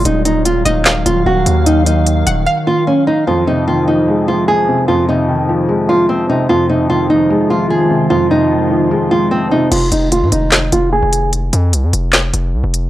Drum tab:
CC |--------|--------|--------|--------|
HH |xxxxxx-x|xxxx----|--------|--------|
CP |----x---|--------|--------|--------|
SD |----o---|--------|--------|--------|

CC |--------|--------|x-------|--------|
HH |--------|--------|xxxxxx-x|xxxxxx-x|
CP |--------|--------|----x---|----x---|
SD |--------|--------|----o---|----o---|